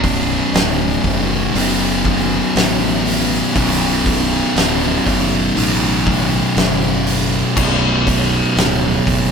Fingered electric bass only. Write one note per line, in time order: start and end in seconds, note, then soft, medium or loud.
0.00 0.39 B0 loud
0.53 0.96 D1 loud
1.04 1.47 F#1 loud
1.55 2.40 F#1 loud
2.55 3.40 A1 loud
3.56 4.41 B0 loud
4.56 4.98 D1 medium
5.07 5.49 F#1 medium
5.56 6.42 A1 medium
6.56 7.42 F#1 loud
7.57 8.42 B0 loud
8.56 8.99 D1 medium
9.07 9.31 F#1 medium